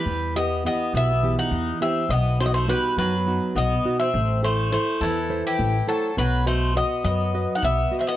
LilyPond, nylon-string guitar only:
\new Staff \with { instrumentName = "Nylon-string guitar" } { \time 7/8 \key e \minor \tempo 4 = 103 e8 <b e' g'>8 <b e' g'>8 b,8 <e b g'>8 e8 <b e' g'>8 | b,8 <b dis' fis'>8 <b dis' fis'>8 fis8 <b dis' fis'>8 b,8 <b dis' fis'>8 | a8 <e' a' c''>8 <e' a' c''>8 e8 <e' a' c''>8 a8 <e' a' c''>8 | b8 <fis' b' dis''>8 <fis' b' dis''>8 fis8 <fis' b' dis''>8 b8 <fis' b' dis''>8 | }